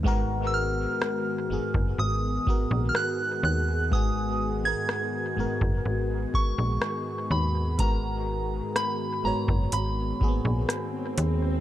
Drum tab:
HH |----------------|----------------|x---x---x---x-x-|
SD |----r-------r---|----r-------r---|----r-------r---|
BD |o------o--o-----|o------o--o-----|o------o--o-----|